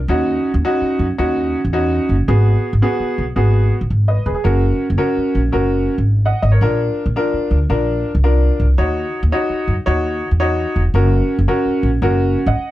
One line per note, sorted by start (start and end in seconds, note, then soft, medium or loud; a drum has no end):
0.08 0.35 D#2 medium
0.08 0.50 C#4 medium
0.08 0.50 D#4 medium
0.08 0.50 F#4 medium
0.54 0.61 D#2 medium
0.65 1.05 C#4 medium
0.65 1.05 D#4 medium
0.65 1.05 F#4 medium
0.81 muted upright bass stroke soft
0.99 1.13 F#2 medium
1.18 1.52 D#2 medium
1.18 1.59 C#4 medium
1.18 1.59 D#4 medium
1.18 1.59 F#4 medium
1.65 1.97 E2 medium
1.73 2.14 C#4 medium
1.73 2.14 D#4 medium
1.73 2.14 F#4 medium
2.09 2.23 F#1 medium
2.28 2.54 G#1 loud
2.28 2.69 B3 medium
2.28 2.69 F#4 medium
2.28 2.69 G#4 medium
2.73 2.80 G#1 medium
2.82 3.23 B3 medium
2.82 3.23 F#4 medium
2.82 3.23 G#4 medium
3.00 muted upright bass stroke soft
3.18 3.32 B1 medium
3.36 3.69 G#1 medium
3.36 3.77 B3 medium
3.36 3.77 F#4 medium
3.36 3.71 G#4 medium
3.81 3.88 A#1 medium
3.90 4.17 G#1 medium
4.08 4.24 B4 soft
4.08 4.25 D#5 medium
4.26 4.33 E1 medium
4.26 4.33 G#4 medium
4.26 4.35 B4 medium
4.35 4.61 G#4 medium
4.44 4.71 F#1 medium
4.44 4.85 C#4 medium
4.44 4.85 F#4 medium
4.44 4.85 A#4 medium
4.90 4.97 F#1 medium
4.98 5.39 C#4 medium
4.98 5.39 F#4 medium
4.98 5.39 A#4 medium
5.17 muted upright bass stroke soft
5.35 5.49 A#1 medium
5.52 5.87 F#1 medium
5.52 5.94 C#4 medium
5.52 5.94 F#4 medium
5.52 5.94 A#4 medium
5.98 6.31 G#1 medium
6.26 6.41 D#5 medium
6.26 6.42 F#5 medium
6.42 6.57 G#1 medium
6.42 6.52 D#5 medium
6.52 6.61 A#4 medium
6.52 6.78 C#5 medium
6.61 6.87 A#1 medium
6.61 7.03 D4 medium
6.61 7.03 F4 medium
6.61 7.03 A#4 medium
7.06 7.13 A#1 medium
7.16 7.57 D4 medium
7.16 7.57 F4 medium
7.16 7.57 A#4 medium
7.33 muted upright bass stroke soft
7.51 7.65 D2 medium
7.70 8.03 A#1 medium
7.70 8.11 D4 medium
7.70 8.11 F4 medium
7.70 8.11 A#4 medium
8.15 8.48 C2 medium
8.24 8.65 D4 medium
8.24 8.65 F4 medium
8.24 8.65 A#4 medium
8.60 8.73 C2 medium
8.78 9.04 D#2 loud
8.78 9.19 D#4 medium
8.78 9.19 F#4 medium
8.78 9.19 C#5 medium
9.23 9.30 D#2 loud
9.32 9.73 D#4 medium
9.32 9.73 F#4 medium
9.32 9.73 C#5 medium
9.50 muted upright bass stroke soft
9.68 9.81 F#2 medium
9.86 10.20 D#2 medium
9.86 10.27 D#4 medium
9.86 10.27 F#4 medium
9.86 10.27 C#5 medium
10.31 10.64 E2 medium
10.40 10.81 D#4 medium
10.40 10.81 F#4 medium
10.40 10.81 C#5 medium
10.76 10.90 E1 medium
10.94 11.20 F#1 loud
10.94 11.35 C#4 medium
10.94 11.35 F#4 medium
10.94 11.35 A#4 medium
11.39 11.45 F#1 medium
11.48 11.89 C#4 medium
11.48 11.89 F#4 medium
11.48 11.89 A#4 medium
11.66 muted upright bass stroke soft
11.83 11.97 A#1 medium
12.02 12.35 F#1 medium
12.02 12.43 C#4 medium
12.02 12.43 F#4 medium
12.02 12.37 A#4 medium
12.46 12.53 G#1 medium
12.46 12.71 D#5 medium
12.46 12.71 F#5 medium
12.56 muted upright bass stroke soft